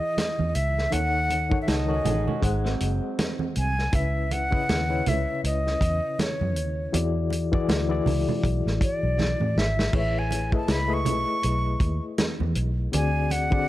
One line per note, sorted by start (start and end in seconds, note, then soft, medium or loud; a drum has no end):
0.00 0.95 E3 medium
0.00 0.95 E4 medium
0.00 0.95 G#4 medium
0.00 0.49 D#5 medium
0.00 0.93 F#5 medium
0.18 snare loud
0.18 closed hi-hat medium
0.18 high conga medium
0.39 0.52 E2 medium
0.39 high conga medium
0.49 0.57 D#5 medium
0.55 0.86 C#2 medium
0.55 0.94 E5 medium
0.55 closed hi-hat medium
0.78 snare soft
0.91 1.56 D#2 medium
0.91 1.36 D#3 medium
0.91 1.37 D#4 medium
0.91 1.37 A4 medium
0.91 1.37 C#5 medium
0.91 1.61 F#5 loud
0.91 1.38 F#5 medium
0.91 closed hi-hat medium
0.91 muted conga soft
1.30 closed hi-hat medium
1.30 muted conga soft
1.50 1.79 D#3 medium
1.50 1.79 D#4 medium
1.50 1.79 A4 medium
1.50 1.80 C#5 medium
1.50 1.80 F#5 medium
1.50 kick loud
1.62 1.70 E5 medium
1.68 1.99 C#2 medium
1.68 1.89 D#4 medium
1.68 1.89 A4 medium
1.68 2.43 D#5 medium
1.68 snare loud
1.68 closed hi-hat medium
1.68 high conga medium
1.87 2.42 D#3 medium
1.87 2.05 C#4 medium
1.87 2.42 D#4 medium
1.87 2.04 F#4 medium
1.87 2.42 A4 medium
1.87 2.42 C#5 medium
1.87 1.95 F#5 medium
1.96 2.46 G#5 medium
2.05 2.24 A1 medium
2.05 2.26 D#4 medium
2.05 2.26 G#4 medium
2.05 closed hi-hat medium
2.05 low conga medium
2.27 2.43 C#4 medium
2.27 2.42 F#4 medium
2.27 low conga medium
2.41 2.74 G#1 loud
2.41 3.63 G#3 medium
2.41 2.64 G#3 medium
2.41 2.64 D#4 medium
2.41 3.64 G#4 medium
2.41 3.64 C5 medium
2.41 3.64 D#5 medium
2.41 3.65 F#5 medium
2.41 kick medium
2.41 closed hi-hat medium
2.65 3.74 F#3 medium
2.65 3.73 C4 medium
2.65 snare soft
2.80 2.99 F#1 medium
2.80 closed hi-hat medium
3.19 snare loud
3.19 closed hi-hat medium
3.19 high conga medium
3.39 high conga medium
3.56 3.87 C2 medium
3.56 3.97 G#5 loud
3.56 closed hi-hat medium
3.79 snare soft
3.92 4.56 C#2 medium
3.92 4.37 C#3 medium
3.92 4.38 C#4 medium
3.92 4.38 E4 medium
3.92 4.38 B4 medium
3.92 4.39 E5 medium
3.92 4.34 E5 medium
3.92 kick loud
3.92 closed hi-hat loud
3.92 muted conga soft
4.31 5.10 F#5 loud
4.31 closed hi-hat medium
4.31 muted conga soft
4.50 4.79 C#3 medium
4.50 4.80 C#4 medium
4.50 4.80 E4 medium
4.50 4.80 B4 medium
4.50 4.81 D#5 medium
4.50 kick medium
4.69 5.00 D#2 medium
4.69 snare loud
4.69 closed hi-hat medium
4.69 high conga medium
4.89 6.06 C#3 medium
4.89 6.06 C#4 medium
4.89 6.07 E4 medium
4.89 6.07 B4 medium
4.89 6.07 C#5 medium
5.06 5.25 C#2 loud
5.06 5.45 E5 medium
5.06 closed hi-hat medium
5.06 muted conga soft
5.06 low conga medium
5.44 5.75 C#2 medium
5.44 6.23 D#5 medium
5.44 closed hi-hat medium
5.67 snare soft
5.81 5.99 E2 medium
5.81 kick medium
5.81 closed hi-hat medium
6.19 6.95 C#5 medium
6.19 snare loud
6.19 closed hi-hat medium
6.19 high conga medium
6.41 6.56 F#2 medium
6.41 high conga medium
6.56 6.87 D#2 medium
6.56 closed hi-hat medium
6.92 7.56 E2 medium
6.92 7.38 E3 medium
6.92 7.38 E4 medium
6.92 7.38 F#4 medium
6.92 7.39 G#4 medium
6.92 7.39 D5 medium
6.92 closed hi-hat loud
6.92 muted conga medium
7.30 closed hi-hat medium
7.30 muted conga soft
7.52 7.80 E3 medium
7.52 7.81 E4 medium
7.52 7.81 F#4 medium
7.52 7.81 G#4 medium
7.52 7.82 D5 loud
7.52 kick medium
7.68 8.00 D2 medium
7.68 snare loud
7.68 closed hi-hat medium
7.68 high conga medium
7.89 9.06 E3 medium
7.89 9.06 E4 medium
7.89 9.07 F#4 medium
7.89 9.07 G#4 medium
7.89 9.07 D5 medium
8.06 8.24 C#2 medium
8.06 open hi-hat soft
8.06 muted conga soft
8.06 low conga medium
8.29 low conga medium
8.44 8.62 B1 medium
8.44 kick medium
8.44 closed hi-hat medium
8.66 8.79 A1 medium
8.66 snare soft
8.81 9.60 D5 medium
8.81 kick medium
8.81 closed hi-hat medium
9.03 9.34 B1 medium
9.19 snare medium
9.19 high conga medium
9.40 9.53 A2 medium
9.40 high conga medium
9.56 9.87 G#1 medium
9.56 9.95 E5 medium
9.56 snare medium
9.79 snare medium
9.92 10.56 A1 medium
9.92 10.38 A3 medium
9.92 10.38 E4 medium
9.92 10.38 G#4 medium
9.92 10.39 B4 medium
9.92 10.39 C#5 medium
9.92 kick loud
9.92 crash medium
9.92 muted conga soft
9.97 10.20 E5 medium
10.19 10.54 G#5 medium
10.31 closed hi-hat medium
10.31 muted conga soft
10.52 10.81 A3 medium
10.52 10.81 E4 medium
10.52 10.81 G#4 medium
10.52 10.81 B4 medium
10.52 10.82 D#5 medium
10.52 10.73 A5 medium
10.52 kick medium
10.68 11.06 C#2 medium
10.68 10.95 B5 loud
10.68 snare loud
10.68 closed hi-hat medium
10.68 high conga medium
10.88 12.05 A3 medium
10.88 12.05 E4 medium
10.88 12.06 G#4 medium
10.88 12.06 B4 medium
10.88 12.06 D#5 medium
10.94 12.04 C#6 loud
11.05 11.24 B1 loud
11.05 closed hi-hat medium
11.05 low conga medium
11.43 11.75 B1 medium
11.43 closed hi-hat medium
11.80 11.98 D#2 medium
11.80 kick medium
11.80 closed hi-hat medium
12.18 snare loud
12.18 closed hi-hat medium
12.18 high conga medium
12.40 12.53 E2 medium
12.40 high conga medium
12.55 12.87 B1 medium
12.55 closed hi-hat medium
12.92 13.56 D2 medium
12.92 13.37 D3 medium
12.92 13.38 C4 medium
12.92 13.38 F#4 medium
12.92 13.38 G#4 medium
12.92 13.38 D5 medium
12.92 13.33 G#5 medium
12.92 closed hi-hat loud
12.92 muted conga medium
13.30 13.68 F#5 loud
13.30 closed hi-hat medium
13.30 muted conga soft
13.51 13.68 D3 medium
13.51 13.68 C4 medium
13.51 13.68 F#4 medium
13.51 13.68 G#4 medium
13.51 13.68 D5 medium
13.51 kick loud